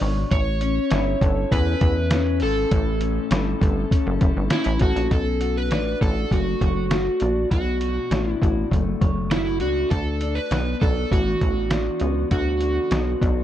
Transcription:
0.00 0.25 G#1 medium
0.00 0.31 B2 medium
0.00 0.37 D4 medium
0.00 0.38 F#4 medium
0.00 1.21 C#5 medium
0.00 open hi-hat soft
0.31 0.79 A1 loud
0.31 1.55 C#5 loud
0.31 kick loud
0.31 closed hi-hat medium
0.61 1.52 C#4 medium
0.61 closed hi-hat medium
0.91 1.15 G1 loud
0.91 1.80 E4 medium
0.91 snare medium
0.91 closed hi-hat medium
1.21 1.45 G1 loud
1.21 2.42 A4 medium
1.21 kick loud
1.21 closed hi-hat medium
1.51 1.75 E2 loud
1.51 2.11 C#4 medium
1.51 2.42 B4 medium
1.51 kick loud
1.51 closed hi-hat loud
1.81 2.43 E2 medium
1.81 3.30 E4 medium
1.81 kick loud
1.81 closed hi-hat medium
2.11 3.01 C#4 medium
2.11 snare loud
2.11 closed hi-hat loud
2.40 2.66 G#1 medium
2.40 3.60 A4 medium
2.40 4.78 A4 medium
2.40 open hi-hat soft
2.71 3.19 A1 loud
2.71 5.11 A2 medium
2.71 kick loud
2.71 closed hi-hat loud
3.01 3.91 C#4 medium
3.01 closed hi-hat medium
3.31 3.55 G1 medium
3.31 4.20 E4 medium
3.31 snare loud
3.31 closed hi-hat medium
3.61 3.85 G1 loud
3.61 4.81 A4 medium
3.61 kick loud
3.61 closed hi-hat medium
3.91 4.51 C#4 medium
3.91 kick loud
3.91 closed hi-hat medium
4.07 4.18 F#1 medium
4.21 4.33 F#1 medium
4.21 5.17 E4 medium
4.21 kick loud
4.21 closed hi-hat medium
4.37 4.48 G1 medium
4.50 5.71 C#4 medium
4.50 4.82 E4 medium
4.50 snare loud
4.50 closed hi-hat loud
4.64 4.78 A1 loud
4.64 closed hi-hat medium
4.79 4.93 A1 medium
4.79 5.12 F#4 medium
4.79 6.61 A4 medium
4.79 kick medium
4.79 closed hi-hat medium
4.96 5.08 A#1 medium
4.96 closed hi-hat medium
5.11 5.73 B1 loud
5.11 5.58 A4 medium
5.11 kick loud
5.11 closed hi-hat medium
5.41 6.01 F#4 medium
5.41 closed hi-hat medium
5.57 5.99 B4 loud
5.71 5.95 A1 medium
5.71 7.20 D4 medium
5.71 snare medium
5.71 closed hi-hat medium
6.01 6.25 A1 loud
6.01 6.91 F#4 soft
6.01 6.33 A4 medium
6.01 kick medium
6.01 closed hi-hat medium
6.31 6.55 F#1 loud
6.31 8.71 A3 medium
6.31 7.50 F#4 medium
6.31 kick medium
6.31 closed hi-hat medium
6.61 7.09 F#1 loud
6.61 9.00 C#5 soft
6.61 kick medium
6.61 closed hi-hat medium
6.91 7.80 F#4 medium
6.91 snare loud
6.91 closed hi-hat medium
7.20 7.46 A#1 medium
7.20 8.10 D4 medium
7.20 closed hi-hat medium
7.50 7.99 B1 loud
7.50 9.91 B2 medium
7.50 8.31 F#4 medium
7.50 kick loud
7.50 closed hi-hat medium
7.81 8.41 F#4 medium
7.81 closed hi-hat medium
8.11 8.35 A1 medium
8.11 9.61 D4 medium
8.11 snare medium
8.11 closed hi-hat medium
8.31 8.67 E4 medium
8.42 8.65 A1 medium
8.42 9.31 F#4 medium
8.42 kick medium
8.42 closed hi-hat medium
8.71 8.95 F#1 medium
8.71 10.51 A3 medium
8.71 kick loud
8.71 closed hi-hat medium
9.01 9.62 F#1 medium
9.01 9.97 C#5 medium
9.01 kick loud
9.01 closed hi-hat medium
9.31 9.60 E4 medium
9.31 11.15 F#4 medium
9.31 snare loud
9.31 closed hi-hat medium
9.60 9.85 C#2 medium
9.60 10.21 D4 medium
9.60 9.92 F#4 medium
9.60 closed hi-hat medium
9.90 10.39 D2 loud
9.90 10.37 A4 loud
9.90 kick loud
9.90 closed hi-hat medium
10.21 10.82 D4 medium
10.21 closed hi-hat medium
10.35 10.82 B4 loud
10.51 10.75 B1 medium
10.51 12.02 B3 medium
10.51 snare medium
10.51 closed hi-hat medium
10.81 11.05 B1 medium
10.81 11.72 D4 medium
10.81 11.09 A4 medium
10.81 kick medium
10.81 closed hi-hat medium
11.12 11.36 A1 medium
11.12 13.44 E3 medium
11.12 12.27 F#4 medium
11.12 kick medium
11.12 closed hi-hat medium
11.41 11.90 A1 medium
11.41 13.44 F#4 medium
11.41 kick medium
11.41 closed hi-hat medium
11.71 12.62 D4 medium
11.71 snare loud
11.71 closed hi-hat loud
12.00 12.25 C#2 medium
12.00 12.91 B3 medium
12.00 closed hi-hat medium
12.31 12.79 D2 loud
12.31 13.44 D3 medium
12.31 13.44 F#4 medium
12.31 kick loud
12.31 closed hi-hat medium
12.61 13.22 D4 medium
12.61 closed hi-hat medium
12.91 13.15 B1 medium
12.91 13.44 B3 medium
12.91 snare medium
12.91 closed hi-hat medium
13.22 13.44 B1 loud
13.22 13.44 D4 medium
13.22 kick medium
13.22 closed hi-hat medium

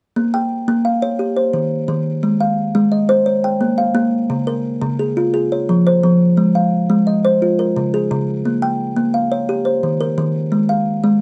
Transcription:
0.16 0.51 A#3 medium
0.34 0.85 G5 medium
0.68 1.02 A#3 medium
0.85 1.37 F5 medium
1.02 1.19 C#5 medium
1.19 1.71 G4 medium
1.37 1.88 C5 medium
1.53 1.87 D#3 medium
1.88 2.23 D#3 medium
2.23 2.57 G#3 medium
2.41 2.92 F5 medium
2.75 3.09 G#3 medium
2.92 3.43 D#5 medium
3.09 3.26 C5 medium
3.26 3.78 C#5 medium
3.44 3.96 G5 medium
3.61 3.93 A#3 medium
3.78 4.30 F5 medium
3.95 4.29 A#3 medium
4.30 4.64 C#3 medium
4.47 4.99 A#4 medium
4.82 5.16 C#3 medium
4.99 5.33 G#4 medium
5.17 5.34 F4 medium
5.34 5.86 G#4 medium
5.52 6.03 C#5 medium
5.69 6.02 F3 medium
5.87 6.38 C5 medium
6.03 6.38 F3 medium
6.37 6.72 G#3 medium
6.55 7.07 F5 medium
6.90 7.24 G#3 medium
7.07 7.59 D#5 medium
7.25 7.42 C5 medium
7.42 7.93 F4 medium
7.59 8.11 A#4 medium
7.76 8.10 C#3 medium
7.94 8.45 G#4 medium
8.11 8.45 C#3 medium
8.45 8.80 A#3 medium
8.62 9.14 G5 medium
8.96 9.31 A#3 medium
9.14 9.66 F5 medium
9.32 9.49 C#5 medium
9.49 10.00 G4 medium
9.65 10.17 C5 medium
9.83 10.17 D#3 medium
10.01 10.52 A#4 medium
10.18 10.52 D#3 medium
10.52 10.86 G#3 medium
10.69 11.21 F5 medium
11.04 11.21 G#3 medium

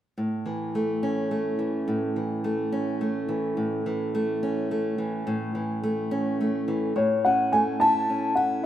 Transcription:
0.18 1.87 A2 medium
0.46 1.58 E3 soft
0.75 1.31 A3 soft
1.03 2.72 C#4 soft
1.31 2.44 A3 soft
1.59 2.16 E3 soft
1.88 3.57 A2 soft
2.16 3.28 E3 soft
2.44 3.00 A3 soft
2.72 4.42 C#4 soft
3.01 4.14 A3 soft
3.29 3.86 E3 soft
3.57 5.26 A2 soft
3.86 4.98 E3 soft
4.15 4.71 A3 soft
4.43 6.11 C#4 soft
4.71 5.83 A3 soft
4.98 5.54 E3 soft
5.27 6.95 A2 medium
5.55 6.67 E3 soft
5.83 6.40 A3 soft
6.11 6.92 C#4 soft
6.41 6.93 A3 soft
6.68 6.92 E3 soft
6.96 8.64 A2 soft
6.96 7.25 C#5 medium
7.25 8.09 C#4 soft
7.25 7.53 F#5 medium
7.52 8.66 A3 soft
7.52 7.81 G#5 medium
7.80 8.36 E4 medium
7.80 8.32 A5 medium
8.09 8.66 C#4 soft
8.35 8.66 E4 soft
8.35 8.62 F#5 medium

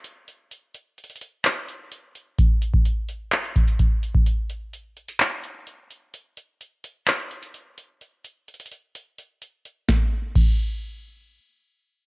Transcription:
0.04 closed hi-hat medium
0.28 closed hi-hat medium
0.51 closed hi-hat medium
0.74 closed hi-hat medium
0.98 closed hi-hat soft
1.04 closed hi-hat medium
1.10 closed hi-hat medium
1.16 closed hi-hat medium
1.21 closed hi-hat medium
1.45 clap loud
1.45 closed hi-hat medium
1.68 closed hi-hat medium
1.92 closed hi-hat medium
2.15 closed hi-hat medium
2.39 kick loud
2.39 closed hi-hat medium
2.62 closed hi-hat medium
2.74 kick medium
2.86 closed hi-hat medium
3.09 closed hi-hat medium
3.32 clap loud
3.32 closed hi-hat medium
3.44 closed hi-hat soft
3.56 kick medium
3.56 closed hi-hat medium
3.68 closed hi-hat medium
3.79 kick medium
3.79 closed hi-hat medium
4.03 closed hi-hat medium
4.14 kick medium
4.26 closed hi-hat medium
4.49 closed hi-hat medium
4.73 closed hi-hat medium
4.97 closed hi-hat soft
5.08 closed hi-hat medium
5.20 clap loud
5.20 closed hi-hat medium
5.43 closed hi-hat medium
5.67 closed hi-hat medium
5.90 closed hi-hat medium
6.14 closed hi-hat medium
6.37 closed hi-hat medium
6.61 closed hi-hat medium
6.84 closed hi-hat medium
7.07 clap loud
7.07 closed hi-hat medium
7.19 closed hi-hat soft
7.31 closed hi-hat medium
7.43 closed hi-hat medium
7.54 closed hi-hat medium
7.78 closed hi-hat medium
8.01 closed hi-hat medium
8.24 closed hi-hat medium
8.48 closed hi-hat soft
8.54 closed hi-hat medium
8.60 closed hi-hat medium
8.66 closed hi-hat medium
8.71 closed hi-hat medium
8.95 closed hi-hat medium
9.18 closed hi-hat medium
9.42 closed hi-hat medium
9.65 closed hi-hat medium
9.89 kick loud
9.89 snare medium
10.36 kick loud
10.36 crash medium

